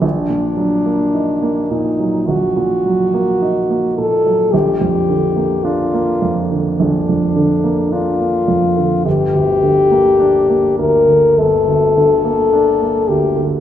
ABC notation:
X:1
M:4/4
L:1/16
Q:1/4=53
K:Bb
V:1 name="French horn"
D6 E2 _G6 A2 | G4 F3 z D4 F4 | G6 B2 A6 G2 |]
V:2 name="Grand piano" clef=bass
B,,, B,, _G, B, E B, B,, G, B,,, B,, G, B, E B, B,, G, | B,,, F,, D, B, D B, F,, D, B,,, F,, D, B, D B, F,, D, | G,,, D,, D, B, D B, D,, D, G,,, D,, D, B, D B, D,, D, |]